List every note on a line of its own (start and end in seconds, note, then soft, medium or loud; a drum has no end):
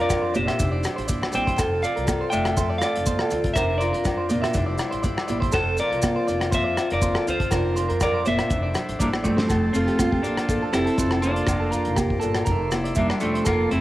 0.00 0.35 F2 medium
0.00 0.33 F2 medium
0.00 0.14 C4 medium
0.00 0.56 C4 medium
0.00 1.57 D4 medium
0.00 0.34 F4 medium
0.00 0.22 A#4 medium
0.00 0.33 A#4 medium
0.00 0.59 A#4 medium
0.00 0.34 D5 medium
0.10 0.58 A#4 medium
0.10 kick medium
0.10 cross-stick medium
0.10 closed hi-hat soft
0.10 low conga medium
0.10 low agogo medium
0.10 maracas loud
0.21 0.33 C5 medium
0.34 0.47 F1 medium
0.34 0.59 A#2 medium
0.34 0.57 F4 medium
0.34 1.06 G4 medium
0.34 1.06 C5 medium
0.34 0.46 D5 medium
0.34 closed hi-hat soft
0.34 high conga medium
0.34 maracas medium
0.47 0.71 E5 medium
0.47 cross-stick medium
0.47 closed hi-hat medium
0.47 low agogo medium
0.59 0.82 F1 loud
0.59 1.55 F2 medium
0.59 1.59 E4 medium
0.59 kick medium
0.59 closed hi-hat soft
0.59 muted conga soft
0.59 maracas loud
0.64 1.60 C5 medium
0.72 0.96 D5 medium
0.83 1.07 E4 medium
0.83 cross-stick medium
0.83 closed hi-hat soft
0.83 muted conga soft
0.83 low conga medium
0.83 low agogo medium
0.83 maracas medium
0.96 1.20 A1 medium
0.96 1.07 C5 medium
0.96 closed hi-hat soft
1.08 1.31 E4 medium
1.08 1.32 D5 medium
1.08 kick medium
1.08 closed hi-hat soft
1.08 high conga medium
1.08 maracas loud
1.22 cross-stick medium
1.22 low agogo medium
1.31 1.56 A1 medium
1.31 1.55 G3 medium
1.31 1.55 E4 medium
1.31 1.80 C5 medium
1.31 1.46 D5 medium
1.31 1.80 G5 medium
1.31 closed hi-hat soft
1.31 muted conga soft
1.31 high conga medium
1.31 maracas medium
1.47 1.58 C5 medium
1.47 kick medium
1.47 closed hi-hat medium
1.56 1.81 F1 loud
1.56 3.05 F2 medium
1.56 4.52 C4 medium
1.56 3.55 F4 medium
1.56 1.82 A4 medium
1.56 3.55 A4 medium
1.56 kick medium
1.56 cross-stick medium
1.56 closed hi-hat medium
1.56 muted conga soft
1.56 low agogo medium
1.56 maracas loud
1.82 2.31 F4 medium
1.82 2.30 D5 medium
1.82 2.30 F5 medium
1.82 closed hi-hat soft
1.82 maracas medium
1.96 2.19 C2 medium
1.96 2.19 A#4 medium
1.96 closed hi-hat soft
2.07 2.57 A4 medium
2.07 kick medium
2.07 cross-stick medium
2.07 closed hi-hat soft
2.07 high conga medium
2.07 low agogo medium
2.07 maracas loud
2.21 2.32 C5 medium
2.30 2.56 F1 medium
2.30 3.53 A3 medium
2.30 2.56 D5 medium
2.30 2.79 E5 medium
2.30 2.78 G5 loud
2.30 muted steel-string acoustic guitar stroke medium
2.30 closed hi-hat medium
2.30 maracas medium
2.45 cross-stick medium
2.45 closed hi-hat medium
2.45 low agogo medium
2.57 2.80 F2 loud
2.57 3.54 A4 medium
2.57 2.69 C5 medium
2.57 kick medium
2.57 closed hi-hat medium
2.57 muted conga soft
2.57 high conga medium
2.57 maracas medium
2.70 2.94 D5 medium
2.78 3.30 F4 medium
2.78 3.50 F5 medium
2.78 cross-stick medium
2.78 closed hi-hat medium
2.78 maracas medium
2.83 3.52 D5 medium
2.83 muted conga soft
2.83 low agogo medium
2.96 3.19 F1 medium
2.96 closed hi-hat medium
3.06 3.54 F2 medium
3.06 4.09 C4 medium
3.06 3.19 C5 medium
3.06 kick medium
3.06 closed hi-hat medium
3.06 high conga medium
3.06 maracas loud
3.19 3.43 A4 medium
3.19 cross-stick medium
3.19 low agogo medium
3.31 3.54 D2 loud
3.31 3.53 F4 medium
3.31 closed hi-hat medium
3.31 muted conga soft
3.31 maracas medium
3.44 kick medium
3.44 closed hi-hat medium
3.54 3.90 F1 loud
3.54 5.52 D4 medium
3.54 3.79 A#4 medium
3.54 4.54 A#4 medium
3.54 3.77 C5 medium
3.54 3.80 E5 loud
3.54 muted steel-string acoustic guitar stroke medium
3.54 kick medium
3.54 cross-stick medium
3.54 closed hi-hat medium
3.54 muted conga soft
3.54 low agogo medium
3.54 maracas medium
3.78 4.30 F4 medium
3.78 4.76 A#4 medium
3.78 3.93 C5 medium
3.78 4.74 D5 medium
3.78 closed hi-hat medium
3.78 maracas medium
3.93 4.27 F2 loud
3.93 4.17 A#4 medium
3.93 closed hi-hat soft
4.04 4.52 A#4 medium
4.04 kick medium
4.04 cross-stick medium
4.04 closed hi-hat soft
4.04 low conga medium
4.04 low agogo medium
4.04 maracas medium
4.17 4.29 C5 medium
4.29 4.43 F1 medium
4.29 4.54 A#2 medium
4.29 4.52 F4 medium
4.29 4.41 D5 medium
4.29 closed hi-hat medium
4.29 high conga loud
4.29 maracas medium
4.42 4.66 E5 medium
4.42 cross-stick medium
4.42 closed hi-hat soft
4.42 low agogo medium
4.54 4.77 F1 loud
4.54 5.53 F2 medium
4.54 5.27 G3 medium
4.54 5.52 D4 medium
4.54 4.79 E4 medium
4.54 5.54 E4 medium
4.54 5.54 C5 medium
4.54 kick medium
4.54 closed hi-hat soft
4.54 muted conga soft
4.54 maracas medium
4.66 4.91 D5 medium
4.78 5.03 E4 medium
4.78 cross-stick medium
4.78 closed hi-hat soft
4.78 muted conga soft
4.78 low agogo medium
4.78 maracas medium
4.91 5.15 A1 medium
4.91 5.02 C5 medium
4.91 closed hi-hat soft
5.03 5.29 E4 medium
5.03 5.27 D5 medium
5.03 kick medium
5.03 closed hi-hat medium
5.03 high conga medium
5.03 maracas medium
5.17 cross-stick medium
5.17 low agogo medium
5.28 5.52 A1 loud
5.28 5.51 G3 medium
5.28 5.51 E4 medium
5.28 5.40 D5 medium
5.28 closed hi-hat soft
5.28 muted conga soft
5.28 high conga medium
5.28 maracas medium
5.40 5.52 C5 medium
5.40 kick medium
5.40 closed hi-hat soft
5.52 5.76 F1 loud
5.52 7.01 F2 medium
5.52 8.48 C4 medium
5.52 7.50 F4 medium
5.52 5.76 A4 medium
5.52 5.77 A4 medium
5.52 5.77 C5 loud
5.52 7.50 A5 medium
5.52 kick medium
5.52 cross-stick medium
5.52 closed hi-hat soft
5.52 low agogo medium
5.52 maracas medium
5.78 6.29 F4 medium
5.78 6.49 A#4 medium
5.78 6.49 D5 medium
5.78 closed hi-hat medium
5.78 maracas medium
5.91 6.14 C2 medium
5.91 6.15 A#4 medium
5.91 closed hi-hat soft
6.02 kick medium
6.02 cross-stick medium
6.02 closed hi-hat soft
6.02 high conga loud
6.02 low agogo medium
6.02 maracas medium
6.16 6.27 C5 medium
6.28 6.51 F1 medium
6.28 6.77 F4 medium
6.28 6.51 D5 medium
6.28 closed hi-hat soft
6.28 maracas medium
6.40 cross-stick medium
6.40 closed hi-hat medium
6.40 low agogo medium
6.51 6.75 F2 loud
6.51 6.64 C5 medium
6.51 6.89 C5 medium
6.51 6.89 E5 loud
6.51 kick medium
6.51 closed hi-hat soft
6.51 muted conga soft
6.51 high conga medium
6.51 maracas medium
6.64 6.88 D5 medium
6.77 7.26 F4 medium
6.77 cross-stick medium
6.77 closed hi-hat medium
6.77 muted conga soft
6.77 low agogo medium
6.77 maracas medium
6.90 7.14 F1 medium
6.90 7.25 A#4 medium
6.90 7.26 D5 medium
6.90 closed hi-hat medium
7.02 7.50 F2 medium
7.02 7.53 C4 medium
7.02 7.15 C5 medium
7.02 kick medium
7.02 closed hi-hat medium
7.02 high conga medium
7.02 maracas loud
7.14 7.39 A4 medium
7.14 cross-stick medium
7.14 low agogo medium
7.27 7.50 D2 loud
7.27 7.49 F4 medium
7.27 7.98 F4 medium
7.27 8.02 C5 medium
7.27 closed hi-hat medium
7.27 muted conga soft
7.27 maracas medium
7.40 kick medium
7.40 closed hi-hat medium
7.51 7.86 F1 loud
7.51 8.26 F2 medium
7.51 8.26 A#2 medium
7.51 9.48 D4 medium
7.51 8.49 D4 medium
7.51 7.75 A#4 medium
7.51 8.51 A#4 medium
7.51 muted steel-string acoustic guitar stroke medium
7.51 kick loud
7.51 cross-stick medium
7.51 closed hi-hat medium
7.51 muted conga soft
7.51 low agogo medium
7.51 maracas loud
7.55 8.03 A#4 medium
7.76 8.27 F4 medium
7.76 7.89 C5 medium
7.76 closed hi-hat medium
7.76 maracas medium
7.89 8.23 F2 medium
7.89 8.13 A#4 medium
7.89 closed hi-hat soft
8.00 8.25 A#4 medium
8.00 8.49 A#4 medium
8.00 8.25 D5 medium
8.00 kick medium
8.00 cross-stick medium
8.00 closed hi-hat soft
8.00 low conga medium
8.00 low agogo medium
8.00 maracas medium
8.14 8.25 C5 medium
8.26 8.38 F1 medium
8.26 8.52 A#2 medium
8.26 8.49 F4 medium
8.26 9.21 C5 medium
8.26 8.38 D5 medium
8.26 9.22 E5 medium
8.26 closed hi-hat medium
8.26 high conga loud
8.26 maracas medium
8.38 8.62 E5 medium
8.38 cross-stick medium
8.38 closed hi-hat soft
8.38 low agogo medium
8.50 8.73 F1 loud
8.50 9.50 F2 medium
8.50 9.50 E4 medium
8.50 9.50 C5 medium
8.50 kick medium
8.50 closed hi-hat soft
8.50 muted conga soft
8.50 maracas medium
8.63 8.87 D5 medium
8.74 9.01 E4 medium
8.74 cross-stick medium
8.74 closed hi-hat medium
8.74 muted conga soft
8.74 low conga medium
8.74 low agogo medium
8.74 maracas medium
8.89 8.99 A1 medium
8.89 closed hi-hat medium
8.99 9.22 A1 medium
8.99 9.08 G3 medium
8.99 9.07 A#3 medium
8.99 9.11 D4 medium
8.99 9.26 E4 medium
8.99 9.22 D5 medium
8.99 kick medium
8.99 closed hi-hat medium
8.99 high conga soft
8.99 maracas loud
9.13 cross-stick medium
9.13 high conga medium
9.13 low agogo medium
9.24 9.47 G1 medium
9.24 9.71 F3 medium
9.24 9.48 G3 medium
9.24 9.70 A3 medium
9.24 9.71 C4 medium
9.24 9.37 D5 medium
9.24 kick soft
9.24 low conga medium
9.24 maracas medium
9.37 9.49 C5 medium
9.37 snare medium
9.37 low conga medium
9.49 9.73 F1 medium
9.49 10.97 F2 medium
9.49 9.73 A4 medium
9.49 11.47 A4 medium
9.49 12.45 C5 medium
9.49 11.47 A5 medium
9.49 kick loud
9.49 cross-stick medium
9.49 closed hi-hat soft
9.49 muted conga soft
9.49 low agogo medium
9.49 maracas loud
9.73 9.87 F1 loud
9.73 10.20 A3 medium
9.73 10.22 C4 medium
9.73 10.21 F4 medium
9.73 9.99 A4 medium
9.73 closed hi-hat soft
9.73 maracas medium
9.87 10.21 F2 loud
9.87 9.98 G4 medium
9.87 closed hi-hat soft
9.99 10.11 F4 medium
9.99 10.49 A4 medium
9.99 kick medium
9.99 cross-stick medium
9.99 closed hi-hat soft
9.99 high conga medium
9.99 low agogo medium
9.99 maracas loud
10.12 10.36 G4 medium
10.12 kick medium
10.22 10.36 A1 medium
10.22 10.69 A#3 medium
10.22 10.69 D4 medium
10.22 closed hi-hat soft
10.22 maracas medium
10.26 10.74 C4 medium
10.26 10.71 F4 medium
10.37 cross-stick medium
10.37 closed hi-hat medium
10.37 low agogo medium
10.37 maracas soft
10.49 10.61 A1 loud
10.49 11.46 A4 medium
10.49 kick medium
10.49 closed hi-hat soft
10.49 muted conga soft
10.49 high conga medium
10.49 maracas medium
10.63 10.73 A4 medium
10.73 10.86 F1 medium
10.73 11.19 C4 medium
10.73 10.99 C4 medium
10.73 11.22 E4 loud
10.73 10.86 G4 medium
10.73 11.21 A4 medium
10.73 cross-stick medium
10.73 closed hi-hat medium
10.73 muted conga soft
10.73 low agogo medium
10.73 maracas medium
10.86 10.97 A4 medium
10.86 closed hi-hat soft
10.98 11.44 F1 loud
10.98 11.47 F2 medium
10.98 12.03 C4 medium
10.98 11.10 C5 medium
10.98 kick medium
10.98 closed hi-hat soft
10.98 high conga medium
10.98 maracas loud
11.11 11.22 A4 medium
11.11 cross-stick medium
11.11 low agogo medium
11.22 11.93 A#3 medium
11.22 11.93 D4 medium
11.22 11.95 F4 medium
11.22 11.46 C5 medium
11.22 closed hi-hat medium
11.22 muted conga soft
11.22 maracas medium
11.36 closed hi-hat medium
11.47 11.70 F1 medium
11.47 12.23 F2 medium
11.47 13.44 D5 medium
11.47 12.47 A#5 medium
11.47 kick medium
11.47 cross-stick medium
11.47 closed hi-hat medium
11.47 muted conga soft
11.47 low agogo medium
11.47 maracas loud
11.60 11.71 A4 medium
11.71 11.85 F2 medium
11.71 12.45 F4 medium
11.71 11.95 A#4 medium
11.71 closed hi-hat medium
11.71 maracas medium
11.85 12.20 F1 loud
11.85 closed hi-hat soft
11.96 12.20 G4 medium
11.96 12.45 A#4 medium
11.96 kick medium
11.96 cross-stick medium
11.96 closed hi-hat soft
11.96 high conga medium
11.96 low agogo medium
11.96 maracas loud
12.10 kick medium
12.20 12.45 G1 medium
12.20 12.48 A#2 medium
12.20 12.45 A4 medium
12.20 closed hi-hat soft
12.20 maracas medium
12.35 cross-stick medium
12.35 closed hi-hat soft
12.35 low agogo medium
12.35 maracas soft
12.45 12.93 F1 loud
12.45 12.70 A#4 medium
12.45 muted steel-string acoustic guitar stroke medium
12.45 kick medium
12.45 closed hi-hat soft
12.45 muted conga soft
12.45 maracas medium
12.51 13.47 E5 medium
12.51 13.81 C6 medium
12.71 12.96 E4 medium
12.71 cross-stick medium
12.71 closed hi-hat medium
12.71 high conga medium
12.71 low agogo medium
12.71 maracas medium
12.84 12.96 D5 medium
12.84 closed hi-hat medium
12.95 13.09 F1 medium
12.95 13.20 G3 medium
12.95 13.21 A#3 medium
12.95 13.20 D4 medium
12.95 13.09 E5 medium
12.95 kick medium
12.95 closed hi-hat soft
12.95 high conga medium
12.95 maracas loud
13.09 13.33 D5 medium
13.09 cross-stick medium
13.09 low agogo medium
13.20 13.45 F1 medium
13.20 13.45 F3 medium
13.20 13.43 G3 medium
13.20 13.46 A3 medium
13.20 13.45 C4 medium
13.20 13.43 D4 medium
13.20 closed hi-hat medium
13.20 muted conga soft
13.20 maracas medium
13.34 13.45 C5 medium
13.34 closed hi-hat soft
13.45 13.69 F1 medium
13.45 13.81 F2 medium
13.45 13.70 F3 medium
13.45 13.72 A#3 loud
13.45 13.70 F4 medium
13.45 13.69 A4 medium
13.45 kick medium
13.45 cross-stick medium
13.45 closed hi-hat soft
13.45 low agogo medium
13.45 maracas loud
13.50 13.81 C5 medium
13.50 13.81 A5 medium
13.71 13.81 F1 loud
13.71 13.81 A3 medium
13.71 13.81 C4 medium
13.71 13.81 E4 medium
13.71 13.81 A4 medium
13.71 closed hi-hat soft